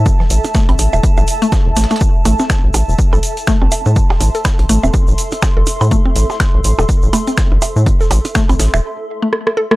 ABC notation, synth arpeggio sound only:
X:1
M:4/4
L:1/16
Q:"Swing 16ths" 1/4=123
K:Am
V:1 name="Synth arpeggio sound"
z E, z2 A, C z4 z A, z2 A, A, | z2 A, C z4 z A z2 A, C z2 | z3 A z2 A, C z4 z A z2 | A, C z4 z A z2 A, C z4 |
z A z2 A, C z4 z A, z2 A A, |]